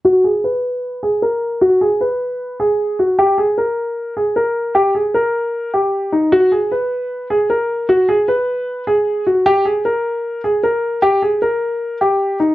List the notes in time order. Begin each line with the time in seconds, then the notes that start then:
0.05 F#4
0.24 G#4
0.44 B4
1.03 G#4
1.22 A#4
1.61 F#4
1.81 G#4
2.01 B4
2.60 G#4
2.99 F#4
3.19 G4
3.38 G#4
3.58 A#4
4.17 G#4
4.36 A#4
4.75 G4
4.95 G#4
5.14 A#4
5.74 G4
6.12 D#4
6.32 F#4
6.52 G#4
6.71 B4
7.30 G#4
7.50 A#4
7.89 F#4
8.09 G#4
8.28 B4
8.87 G#4
9.27 F#4
9.46 G4
9.65 G#4
9.85 A#4
10.44 G#4
10.63 A#4
11.02 G4
11.22 G#4
11.42 A#4
12.01 G4
12.40 D#4